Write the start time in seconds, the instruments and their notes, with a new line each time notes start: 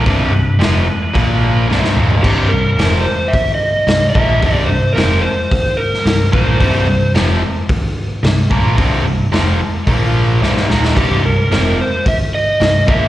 Already playing: electric slide guitar B4
0.05 picked electric bass C1, overdriven electric guitar C2 G2 C3, kick, open hi-hat
0.32 picked electric bass C1, overdriven electric guitar C2 G2
0.59 picked electric bass F1, overdriven electric guitar F2 C3 F3, snare, open hi-hat
1.13 picked electric bass A#1, overdriven electric guitar A#2 F3 A#3, kick, open hi-hat
1.68 picked electric bass C1, overdriven electric guitar C2 G2 C3, snare
1.84 snare
1.96 picked electric bass D#1, overdriven electric guitar D#2 A#2 D#3, mid tom
2.10 floor tom
2.23 picked electric bass C1, overdriven electric guitar C2 G2 C3, electric slide guitar G4, kick, crash
2.49 picked electric bass C1, overdriven electric guitar C2 G2, electric slide guitar A#4
2.78 picked electric bass F1, overdriven electric guitar F2 C3 F3, snare, open hi-hat
3.01 electric slide guitar C5
3.28 electric slide guitar E5
3.33 kick, open hi-hat
3.55 electric slide guitar D#5
3.87 picked electric bass C1, overdriven electric guitar C2 G2, snare, open hi-hat
4.10 electric slide guitar E5
4.14 picked electric bass A#1, overdriven electric guitar A#2 F3 A#3, kick
4.41 picked electric bass C1, overdriven electric guitar C2 G2 C3, kick, open hi-hat
4.56 electric slide guitar D5
4.65 overdriven electric guitar C2, electric slide guitar C5
4.69 picked electric bass C1, overdriven electric guitar G2
4.93 overdriven electric guitar F2, electric slide guitar A#4
4.97 picked electric bass F1, overdriven electric guitar C3 F3, snare, open hi-hat
5.21 electric slide guitar C5
5.51 kick, open hi-hat
5.77 electric slide guitar A#4
5.94 snare
6.06 picked electric bass C1, overdriven electric guitar C2 G2, snare, open hi-hat
6.32 picked electric bass A#1, overdriven electric guitar A#2 F3 A#3, electric slide guitar C5, kick
6.59 picked electric bass C1, overdriven electric guitar C2 G2 C3, kick, open hi-hat
6.86 picked electric bass C1, overdriven electric guitar C2 G2
7.14 picked electric bass F1, overdriven electric guitar F2 C3 F3, snare, open hi-hat
7.69 kick, open hi-hat
8.23 picked electric bass C1, overdriven electric guitar C2 G2, snare, open hi-hat
8.50 picked electric bass A#1, overdriven electric guitar A#2 F3 A#3, kick
8.77 picked electric bass C1, overdriven electric guitar C2 G2 C3, kick, open hi-hat
9.04 picked electric bass C1, overdriven electric guitar C2 G2
9.32 picked electric bass F1, overdriven electric guitar F2 C3 F3, snare, open hi-hat
9.87 picked electric bass A#1, overdriven electric guitar A#2 F3 A#3, kick, open hi-hat
10.41 picked electric bass C1, overdriven electric guitar C2 G2 C3, snare
10.57 snare
10.68 picked electric bass D#1, overdriven electric guitar D#2 A#2 D#3, snare
10.85 snare
10.97 picked electric bass C1, overdriven electric guitar C2 G2 C3, electric slide guitar G4, kick, open hi-hat, crash
11.24 picked electric bass C1, overdriven electric guitar C2 G2, electric slide guitar A#4
11.51 picked electric bass F1, overdriven electric guitar F2 C3 F3, snare, open hi-hat
11.81 electric slide guitar C5
12.06 electric slide guitar E5, kick, open hi-hat
12.35 electric slide guitar D#5
12.60 picked electric bass C1, overdriven electric guitar C2 G2, snare, open hi-hat
12.87 picked electric bass A#1, overdriven electric guitar A#2 F3 A#3, electric slide guitar E5, kick